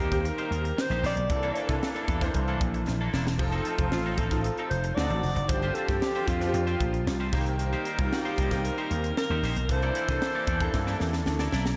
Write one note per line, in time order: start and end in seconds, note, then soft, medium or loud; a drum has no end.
0.00 0.29 D#2 medium
0.00 0.11 D#3 medium
0.00 1.00 G3 medium
0.00 0.11 A#3 medium
0.00 0.12 C4 medium
0.00 0.11 D#4 medium
0.00 0.99 D#4 medium
0.00 0.11 G4 medium
0.00 0.12 G4 loud
0.00 0.21 G4 medium
0.00 0.99 A#4 loud
0.00 0.10 C5 medium
0.11 1.09 D#3 medium
0.11 1.09 A#3 medium
0.11 1.09 C4 medium
0.11 1.09 G4 medium
0.11 muted clean electric guitar stroke medium
0.11 kick medium
0.11 snare soft
0.11 closed hi-hat medium
0.20 0.30 C5 medium
0.24 0.82 A#4 medium
0.24 muted clean electric guitar stroke soft
0.24 closed hi-hat medium
0.38 0.50 A#3 medium
0.38 0.51 D#4 medium
0.38 0.51 G4 medium
0.38 0.51 C5 medium
0.38 closed hi-hat soft
0.51 0.71 D#2 medium
0.51 muted clean electric guitar stroke soft
0.51 closed hi-hat medium
0.64 muted clean electric guitar stroke medium
0.64 closed hi-hat medium
0.77 1.05 C5 loud
0.77 muted clean electric guitar stroke soft
0.77 snare loud
0.90 1.00 A#1 medium
0.90 1.02 A#3 medium
0.90 1.02 D#4 medium
0.90 1.03 G4 medium
0.90 1.03 C5 medium
0.90 closed hi-hat soft
1.03 1.13 A#1 medium
1.03 1.19 A#3 medium
1.03 1.16 D#4 medium
1.03 1.16 G4 medium
1.03 1.15 C5 loud
1.03 1.79 D5 loud
1.03 snare soft
1.03 open hi-hat medium
1.16 1.26 B1 medium
1.16 muted clean electric guitar stroke soft
1.16 closed hi-hat medium
1.29 1.50 C2 loud
1.29 1.66 E3 medium
1.29 3.10 E3 medium
1.29 1.66 A#3 medium
1.29 1.66 D4 medium
1.29 3.10 D4 medium
1.29 3.10 A4 loud
1.29 1.66 A4 medium
1.29 muted clean electric guitar stroke soft
1.29 kick loud
1.29 closed hi-hat medium
1.43 1.55 E3 medium
1.43 1.55 A#3 medium
1.43 1.56 D4 medium
1.43 1.56 A4 medium
1.43 closed hi-hat soft
1.55 1.69 E3 medium
1.55 1.69 A#3 medium
1.55 1.68 D4 medium
1.55 1.68 A4 medium
1.55 closed hi-hat medium
1.68 1.79 C3 loud
1.68 2.17 E3 medium
1.68 2.17 A#3 medium
1.68 2.18 D4 medium
1.68 2.18 A4 medium
1.68 muted clean electric guitar stroke soft
1.68 kick loud
1.68 snare soft
1.68 closed hi-hat medium
1.82 muted clean electric guitar stroke soft
1.82 snare loud
1.95 2.07 E3 medium
1.95 2.08 A#3 medium
1.95 2.08 D4 medium
1.95 2.09 A4 medium
1.95 closed hi-hat soft
2.08 2.28 E2 medium
2.08 2.21 E3 medium
2.08 2.21 A#3 medium
2.08 2.21 D4 medium
2.08 2.20 A4 medium
2.08 kick medium
2.08 closed hi-hat medium
2.20 3.18 E3 medium
2.20 3.19 A#3 medium
2.20 3.19 D4 medium
2.20 3.19 C5 loud
2.20 muted clean electric guitar stroke medium
2.20 kick medium
2.20 snare soft
2.20 closed hi-hat medium
2.34 2.55 C2 medium
2.34 muted clean electric guitar stroke soft
2.34 kick medium
2.34 closed hi-hat medium
2.48 2.60 E3 medium
2.48 2.60 A#3 medium
2.48 2.61 D4 medium
2.48 2.61 A4 medium
2.48 closed hi-hat soft
2.61 2.81 A#1 medium
2.61 muted clean electric guitar stroke soft
2.61 kick medium
2.61 closed hi-hat medium
2.74 muted clean electric guitar stroke soft
2.74 closed hi-hat soft
2.87 3.07 A#1 medium
2.87 muted clean electric guitar stroke soft
2.87 snare medium
3.01 3.12 E3 medium
3.01 3.12 A#3 medium
3.01 3.13 D4 medium
3.01 3.13 A4 medium
3.13 3.39 E1 medium
3.13 3.29 E3 medium
3.13 3.26 A#3 medium
3.13 3.26 D4 medium
3.13 3.25 A4 medium
3.13 snare loud
3.27 muted clean electric guitar stroke soft
3.27 snare medium
3.38 3.59 F1 medium
3.38 3.75 F3 medium
3.38 4.68 A3 medium
3.38 3.76 C4 medium
3.38 3.76 D#4 medium
3.38 4.68 F4 medium
3.38 3.76 A4 loud
3.38 4.67 C5 medium
3.38 muted clean electric guitar stroke soft
3.38 kick loud
3.38 splash medium
3.52 3.65 F3 medium
3.52 3.65 C4 medium
3.52 3.66 D#4 medium
3.52 3.66 A4 medium
3.52 closed hi-hat soft
3.65 3.78 F3 medium
3.65 3.78 C4 medium
3.65 3.79 D#4 medium
3.65 3.78 A4 medium
3.65 closed hi-hat medium
3.78 3.89 F1 medium
3.78 4.27 F3 medium
3.78 4.27 C4 medium
3.78 4.28 D#4 medium
3.78 4.28 A4 medium
3.78 muted clean electric guitar stroke medium
3.78 kick loud
3.78 closed hi-hat medium
3.91 4.12 A1 medium
3.91 4.19 F4 medium
3.91 muted clean electric guitar stroke soft
3.91 snare loud
4.06 4.18 F3 medium
4.06 4.18 C4 medium
4.06 4.19 D#4 medium
4.06 4.19 A4 medium
4.18 4.48 A1 medium
4.18 4.31 F3 medium
4.18 4.31 C4 medium
4.18 4.31 D#4 medium
4.18 4.69 A4 medium
4.18 4.31 A4 medium
4.18 kick medium
4.18 closed hi-hat medium
4.30 4.96 F3 medium
4.30 4.95 C4 medium
4.30 4.97 D#4 medium
4.30 4.97 F4 medium
4.30 muted clean electric guitar stroke soft
4.30 kick medium
4.30 snare soft
4.30 closed hi-hat medium
4.44 muted clean electric guitar stroke soft
4.44 closed hi-hat medium
4.57 4.70 F3 medium
4.57 4.71 C4 medium
4.57 4.71 D#4 medium
4.57 4.71 A4 medium
4.57 closed hi-hat soft
4.70 4.91 F1 medium
4.70 4.96 C5 loud
4.70 muted clean electric guitar stroke soft
4.70 closed hi-hat medium
4.84 muted clean electric guitar stroke soft
4.84 closed hi-hat soft
4.95 5.07 D2 loud
4.95 5.45 D#3 medium
4.95 5.22 F#3 medium
4.95 5.45 C4 medium
4.95 5.46 D4 medium
4.95 5.22 D#4 medium
4.95 5.46 F#4 medium
4.95 5.22 A4 medium
4.95 5.50 D5 loud
4.95 muted clean electric guitar stroke soft
4.95 snare loud
5.10 5.20 A1 medium
5.10 muted clean electric guitar stroke soft
5.10 closed hi-hat soft
5.23 5.33 F1 medium
5.23 open hi-hat medium
5.36 5.46 F#1 medium
5.36 muted clean electric guitar stroke soft
5.36 closed hi-hat medium
5.48 5.69 G1 loud
5.48 7.03 D3 medium
5.48 5.85 F3 medium
5.48 7.03 C4 medium
5.48 5.85 C4 medium
5.48 5.86 D4 medium
5.48 7.03 G4 medium
5.48 5.86 G4 medium
5.48 5.76 C5 loud
5.48 muted clean electric guitar stroke soft
5.48 kick loud
5.48 closed hi-hat loud
5.62 5.75 C4 medium
5.62 5.76 F4 medium
5.62 5.76 G4 medium
5.62 5.77 C5 medium
5.62 closed hi-hat soft
5.74 5.88 C4 medium
5.74 5.89 F4 medium
5.74 5.88 G4 medium
5.74 6.02 A4 medium
5.74 5.87 C5 medium
5.74 closed hi-hat medium
5.87 5.99 G2 medium
5.87 6.37 F3 medium
5.87 6.37 C4 medium
5.87 6.37 D4 medium
5.87 6.37 G4 medium
5.87 muted clean electric guitar stroke soft
5.87 kick loud
5.87 snare soft
5.87 closed hi-hat medium
6.01 6.28 G4 medium
6.01 muted clean electric guitar stroke soft
6.01 snare loud
6.15 6.27 C4 medium
6.15 6.28 F4 medium
6.15 6.28 G4 medium
6.15 6.29 C5 medium
6.15 closed hi-hat soft
6.27 6.48 F2 medium
6.27 6.41 C4 medium
6.27 7.32 F4 medium
6.27 6.41 F4 medium
6.27 6.41 G4 medium
6.27 6.41 C5 medium
6.27 kick medium
6.27 closed hi-hat medium
6.40 7.32 F3 medium
6.40 7.32 C4 medium
6.40 7.33 D4 medium
6.40 6.47 F4 medium
6.40 muted clean electric guitar stroke medium
6.40 snare soft
6.40 closed hi-hat medium
6.48 7.32 G4 medium
6.54 6.74 F2 loud
6.54 muted clean electric guitar stroke soft
6.54 closed hi-hat medium
6.67 6.79 C4 medium
6.67 6.80 F4 medium
6.67 6.80 G4 medium
6.67 6.80 C5 medium
6.67 closed hi-hat soft
6.80 7.01 A#1 medium
6.80 muted clean electric guitar stroke soft
6.80 kick medium
6.80 closed hi-hat medium
6.93 muted clean electric guitar stroke soft
6.93 closed hi-hat soft
7.07 7.27 C2 medium
7.07 muted clean electric guitar stroke soft
7.07 snare loud
7.20 7.33 C4 medium
7.20 7.33 F4 medium
7.20 7.33 G4 medium
7.20 7.32 C5 medium
7.32 7.73 C2 medium
7.32 7.93 D#3 medium
7.32 9.39 G3 medium
7.32 7.94 A#3 medium
7.32 7.49 A#3 medium
7.32 7.94 C4 medium
7.32 9.39 D#4 medium
7.32 7.46 D#4 medium
7.32 7.94 G4 loud
7.32 7.46 G4 medium
7.32 9.39 A#4 loud
7.32 7.45 C5 medium
7.32 kick loud
7.32 snare soft
7.32 open hi-hat medium
7.46 muted clean electric guitar stroke medium
7.46 closed hi-hat medium
7.59 muted clean electric guitar stroke soft
7.59 closed hi-hat loud
7.73 7.84 A#3 medium
7.73 7.85 D#4 medium
7.73 7.85 G4 medium
7.73 7.86 C5 medium
7.73 closed hi-hat soft
7.85 7.98 A#3 medium
7.85 7.98 D#4 medium
7.85 7.98 G4 medium
7.85 7.98 C5 medium
7.85 closed hi-hat medium
7.97 8.09 C2 loud
7.97 8.47 D#3 medium
7.97 8.47 A#3 medium
7.97 8.47 C4 medium
7.97 8.47 F4 medium
7.97 kick loud
7.97 closed hi-hat medium
8.12 8.66 G4 medium
8.12 muted clean electric guitar stroke soft
8.12 snare loud
8.25 8.38 A#3 medium
8.25 8.38 D#4 medium
8.25 8.39 G4 medium
8.25 8.39 C5 medium
8.25 closed hi-hat soft
8.38 8.68 C2 medium
8.38 8.51 A#3 medium
8.38 8.51 D#4 medium
8.38 8.51 G4 medium
8.38 8.50 C5 medium
8.38 kick medium
8.38 closed hi-hat medium
8.51 9.48 D#3 medium
8.51 9.48 A#3 medium
8.51 9.49 C4 medium
8.51 9.49 G4 medium
8.51 muted clean electric guitar stroke medium
8.51 kick medium
8.51 snare soft
8.51 closed hi-hat medium
8.65 9.17 A#4 loud
8.65 muted clean electric guitar stroke soft
8.65 closed hi-hat medium
8.78 8.89 A#3 medium
8.78 8.90 D#4 medium
8.78 8.90 G4 medium
8.78 8.91 C5 medium
8.78 closed hi-hat soft
8.91 9.11 D#2 medium
8.91 muted clean electric guitar stroke soft
8.91 closed hi-hat medium
9.04 muted clean electric guitar stroke soft
9.04 closed hi-hat medium
9.17 9.73 A#4 loud
9.17 muted clean electric guitar stroke soft
9.17 snare loud
9.30 9.40 D#2 loud
9.30 9.42 A#3 medium
9.30 9.43 D#4 medium
9.30 9.43 G4 medium
9.30 9.43 C5 medium
9.43 9.53 A#1 medium
9.43 9.59 A#3 medium
9.43 9.57 D#4 medium
9.43 9.57 G4 medium
9.43 9.56 C5 loud
9.43 snare soft
9.43 open hi-hat medium
9.56 9.66 B1 medium
9.56 muted clean electric guitar stroke soft
9.56 closed hi-hat medium
9.69 9.89 C2 loud
9.69 10.05 E3 medium
9.69 11.49 E3 medium
9.69 10.05 A#3 medium
9.69 10.05 D4 medium
9.69 11.49 D4 medium
9.69 11.49 A4 loud
9.69 10.06 A4 medium
9.69 11.28 C5 loud
9.69 muted clean electric guitar stroke soft
9.69 kick loud
9.69 closed hi-hat loud
9.82 9.94 A#3 medium
9.82 9.95 E4 medium
9.82 9.95 A4 medium
9.82 9.95 D5 medium
9.82 closed hi-hat soft
9.95 10.08 A#3 medium
9.95 10.08 E4 medium
9.95 10.08 A4 medium
9.95 10.08 D5 medium
9.95 closed hi-hat medium
10.08 10.19 C3 loud
10.08 10.57 E3 medium
10.08 10.57 A#3 medium
10.08 10.58 D4 medium
10.08 10.58 A4 medium
10.08 muted clean electric guitar stroke soft
10.08 kick loud
10.08 snare soft
10.08 closed hi-hat medium
10.22 muted clean electric guitar stroke soft
10.22 snare loud
10.35 10.47 A#3 medium
10.35 10.47 E4 medium
10.35 10.47 A4 medium
10.35 10.48 D5 medium
10.47 10.68 E2 medium
10.47 10.60 A#3 medium
10.47 10.61 E4 medium
10.47 10.60 A4 medium
10.47 10.60 D5 medium
10.47 kick medium
10.47 closed hi-hat medium
10.60 11.58 E3 medium
10.60 11.58 A#3 medium
10.60 11.59 D4 medium
10.60 11.59 A4 loud
10.60 muted clean electric guitar stroke soft
10.60 kick loud
10.60 closed hi-hat medium
10.74 10.94 G2 medium
10.74 muted clean electric guitar stroke soft
10.74 kick medium
10.74 snare medium
10.87 11.00 A#3 medium
10.87 11.00 E4 medium
10.87 11.00 A4 medium
10.87 11.00 D5 medium
10.87 snare medium
11.00 11.21 E2 medium
11.00 muted clean electric guitar stroke soft
11.00 snare medium
11.13 muted clean electric guitar stroke soft
11.13 snare medium
11.26 11.47 D2 medium
11.26 muted clean electric guitar stroke soft
11.26 snare medium
11.39 11.51 A#3 medium
11.39 11.52 E4 medium
11.39 11.52 A4 medium
11.39 11.52 D5 medium
11.39 snare medium
11.52 11.73 B1 medium
11.52 11.69 A#3 medium
11.52 11.66 E4 medium
11.52 11.66 A4 medium
11.52 11.65 D5 medium
11.52 snare loud
11.66 muted clean electric guitar stroke soft
11.66 snare medium